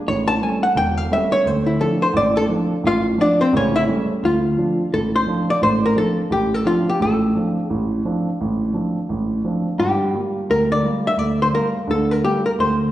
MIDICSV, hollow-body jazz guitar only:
0, 0, Header, 1, 2, 480
1, 0, Start_track
1, 0, Key_signature, -1, "minor"
1, 0, Tempo, 347826
1, 70, Time_signature, 4, 2, 24, 8
1, 17825, End_track
2, 0, Start_track
2, 0, Title_t, "Hollow-body jazz guitar"
2, 0, Program_c, 0, 26
2, 112, Note_on_c, 0, 73, 93
2, 380, Note_on_c, 0, 81, 119
2, 381, Note_off_c, 0, 73, 0
2, 591, Note_off_c, 0, 81, 0
2, 591, Note_on_c, 0, 80, 91
2, 861, Note_off_c, 0, 80, 0
2, 870, Note_on_c, 0, 78, 94
2, 1036, Note_off_c, 0, 78, 0
2, 1066, Note_on_c, 0, 79, 102
2, 1344, Note_off_c, 0, 79, 0
2, 1344, Note_on_c, 0, 77, 97
2, 1512, Note_off_c, 0, 77, 0
2, 1559, Note_on_c, 0, 76, 87
2, 1823, Note_on_c, 0, 73, 105
2, 1824, Note_off_c, 0, 76, 0
2, 2029, Note_off_c, 0, 73, 0
2, 2029, Note_on_c, 0, 72, 88
2, 2297, Note_on_c, 0, 64, 54
2, 2299, Note_off_c, 0, 72, 0
2, 2469, Note_off_c, 0, 64, 0
2, 2494, Note_on_c, 0, 69, 77
2, 2772, Note_off_c, 0, 69, 0
2, 2790, Note_on_c, 0, 72, 92
2, 2955, Note_off_c, 0, 72, 0
2, 2990, Note_on_c, 0, 74, 99
2, 3260, Note_off_c, 0, 74, 0
2, 3270, Note_on_c, 0, 69, 105
2, 3372, Note_off_c, 0, 69, 0
2, 3957, Note_on_c, 0, 65, 80
2, 3964, Note_on_c, 0, 77, 85
2, 4382, Note_off_c, 0, 65, 0
2, 4382, Note_off_c, 0, 77, 0
2, 4429, Note_on_c, 0, 74, 91
2, 4437, Note_on_c, 0, 62, 74
2, 4699, Note_off_c, 0, 74, 0
2, 4703, Note_off_c, 0, 62, 0
2, 4703, Note_on_c, 0, 72, 91
2, 4713, Note_on_c, 0, 60, 77
2, 4871, Note_off_c, 0, 72, 0
2, 4877, Note_off_c, 0, 60, 0
2, 4920, Note_on_c, 0, 61, 75
2, 4923, Note_on_c, 0, 73, 76
2, 5178, Note_off_c, 0, 73, 0
2, 5183, Note_on_c, 0, 76, 93
2, 5186, Note_off_c, 0, 61, 0
2, 5191, Note_on_c, 0, 64, 75
2, 5287, Note_off_c, 0, 76, 0
2, 5293, Note_off_c, 0, 64, 0
2, 5867, Note_on_c, 0, 65, 79
2, 6753, Note_off_c, 0, 65, 0
2, 6813, Note_on_c, 0, 69, 91
2, 6890, Note_off_c, 0, 69, 0
2, 7115, Note_on_c, 0, 72, 92
2, 7549, Note_off_c, 0, 72, 0
2, 7593, Note_on_c, 0, 74, 92
2, 7750, Note_off_c, 0, 74, 0
2, 7770, Note_on_c, 0, 72, 95
2, 8067, Note_off_c, 0, 72, 0
2, 8081, Note_on_c, 0, 70, 88
2, 8245, Note_off_c, 0, 70, 0
2, 8250, Note_on_c, 0, 69, 86
2, 8719, Note_off_c, 0, 69, 0
2, 8725, Note_on_c, 0, 67, 87
2, 9030, Note_off_c, 0, 67, 0
2, 9030, Note_on_c, 0, 69, 84
2, 9200, Note_off_c, 0, 69, 0
2, 9201, Note_on_c, 0, 65, 80
2, 9503, Note_off_c, 0, 65, 0
2, 9514, Note_on_c, 0, 67, 80
2, 9671, Note_off_c, 0, 67, 0
2, 9690, Note_on_c, 0, 69, 76
2, 10656, Note_off_c, 0, 69, 0
2, 10656, Note_on_c, 0, 67, 76
2, 11064, Note_off_c, 0, 67, 0
2, 13517, Note_on_c, 0, 67, 83
2, 14494, Note_off_c, 0, 67, 0
2, 14499, Note_on_c, 0, 70, 90
2, 14791, Note_off_c, 0, 70, 0
2, 14791, Note_on_c, 0, 74, 97
2, 15227, Note_off_c, 0, 74, 0
2, 15280, Note_on_c, 0, 76, 90
2, 15437, Note_off_c, 0, 76, 0
2, 15437, Note_on_c, 0, 74, 95
2, 15731, Note_off_c, 0, 74, 0
2, 15762, Note_on_c, 0, 72, 87
2, 15831, Note_off_c, 0, 72, 0
2, 15934, Note_on_c, 0, 70, 80
2, 16415, Note_off_c, 0, 70, 0
2, 16432, Note_on_c, 0, 69, 84
2, 16715, Note_off_c, 0, 69, 0
2, 16715, Note_on_c, 0, 70, 76
2, 16887, Note_off_c, 0, 70, 0
2, 16898, Note_on_c, 0, 67, 78
2, 17162, Note_off_c, 0, 67, 0
2, 17192, Note_on_c, 0, 70, 80
2, 17261, Note_off_c, 0, 70, 0
2, 17390, Note_on_c, 0, 72, 77
2, 17825, Note_off_c, 0, 72, 0
2, 17825, End_track
0, 0, End_of_file